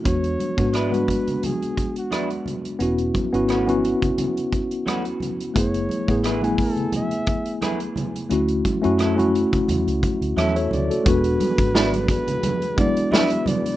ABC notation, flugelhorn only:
X:1
M:4/4
L:1/16
Q:"Swing 16ths" 1/4=87
K:Emix
V:1 name="Flugelhorn"
c4 B4 G3 F3 z2 | z16 | c4 B2 A2 e4 z4 | z12 e2 d2 |
B6 B4 d2 e2 d2 |]